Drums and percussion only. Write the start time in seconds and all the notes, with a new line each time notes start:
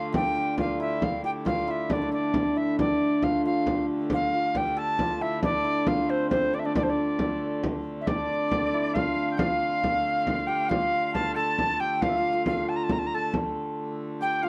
0.14 frame drum
0.36 frame drum
0.58 frame drum
1.02 frame drum
1.24 frame drum
1.46 frame drum
1.68 frame drum
1.90 frame drum
2.12 frame drum
2.34 frame drum
2.79 frame drum
3.01 frame drum
3.23 frame drum
3.67 frame drum
3.89 frame drum
4.10 frame drum
4.32 frame drum
4.55 frame drum
4.99 frame drum
5.21 frame drum
5.43 frame drum
5.65 frame drum
5.87 frame drum
6.31 frame drum
6.54 frame drum
6.75 frame drum
7.19 frame drum
7.63 frame drum
8.07 frame drum
8.30 frame drum
8.51 frame drum
8.96 frame drum
9.17 frame drum
9.39 frame drum
9.61 frame drum
9.84 frame drum
10.27 frame drum
10.49 frame drum
10.71 frame drum
10.93 frame drum
11.15 frame drum
11.59 frame drum
11.80 frame drum
12.02 frame drum
12.46 frame drum
12.89 frame drum
13.12 frame drum
13.34 frame drum
13.56 frame drum
14.43 frame drum